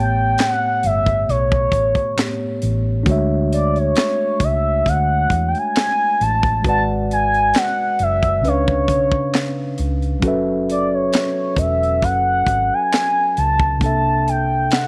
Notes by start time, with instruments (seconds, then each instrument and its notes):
Already playing: fingered electric bass A1, tine electric piano A2 A3 B3 G4 C#5, soft synth lead G5
0.38 soft synth lead F#5, snare, clap, closed hi-hat
0.83 fingered electric bass G1, soft synth lead E5, closed hi-hat
1.06 kick, closed hi-hat
1.29 fingered electric bass B1, soft synth lead C#5, closed hi-hat
1.52 kick
1.72 fingered electric bass A1, kick, closed hi-hat
1.95 kick, closed hi-hat
2.16 tine electric piano A2 A3 B3 G4 C#5, snare, clap, closed hi-hat
2.62 fingered electric bass A1, closed hi-hat
3.03 fingered electric bass D2, tine electric piano A3 D4 F#4, kick, closed hi-hat
3.08 tine electric piano G#3 C#5 E5
3.53 soft synth lead D5, closed hi-hat
3.76 soft synth lead C#5, closed hi-hat
3.95 snare, clap, closed hi-hat
4.40 fingered electric bass C#2, soft synth lead E5, kick, closed hi-hat
4.86 fingered electric bass D2, soft synth lead F#5, kick, closed hi-hat
5.30 fingered electric bass E2, kick, closed hi-hat
5.49 soft synth lead G5
5.55 soft synth lead G#5, closed hi-hat
5.76 snare, clap, closed hi-hat
6.21 fingered electric bass A1, soft synth lead A5, closed hi-hat
6.43 kick, closed hi-hat
6.62 fingered electric bass G#1, tine electric piano G#3 F#4 B4, kick, closed hi-hat
6.68 tine electric piano D5 F#5, soft synth lead A5
7.11 soft synth lead G#5, closed hi-hat
7.34 closed hi-hat
7.54 soft synth lead F#5, snare, clap, closed hi-hat
7.99 fingered electric bass F#1, soft synth lead E5, closed hi-hat
8.23 kick, closed hi-hat
8.41 fingered electric bass C#2, tine electric piano C#3 C#4, closed hi-hat
8.45 tine electric piano D4 B4, soft synth lead C#5
8.49 tine electric piano F5
8.68 kick
8.88 fingered electric bass B1, kick, closed hi-hat
9.12 kick
9.34 snare, clap, closed hi-hat
9.78 fingered electric bass C#2, closed hi-hat
10.02 closed hi-hat
10.20 fingered electric bass F#1, tine electric piano F#3 C#4 F#4, kick, closed hi-hat
10.25 tine electric piano A4 B4 E5
10.70 soft synth lead D5, closed hi-hat
10.94 soft synth lead C#5
11.13 snare, clap, closed hi-hat
11.56 fingered electric bass E1, soft synth lead E5, kick, closed hi-hat
11.83 closed hi-hat
12.02 fingered electric bass F#1, soft synth lead F#5, kick, closed hi-hat
12.47 fingered electric bass G#1, kick, closed hi-hat
12.74 soft synth lead G#5
12.93 snare, clap, closed hi-hat
13.37 fingered electric bass C#2, soft synth lead A5, closed hi-hat
13.60 kick
13.78 fingered electric bass C2, tine electric piano C3 A#3 D4, kick, closed hi-hat
13.83 tine electric piano A4 E5, soft synth lead A5
14.28 soft synth lead G5, closed hi-hat
14.71 soft synth lead F#5, snare, clap, closed hi-hat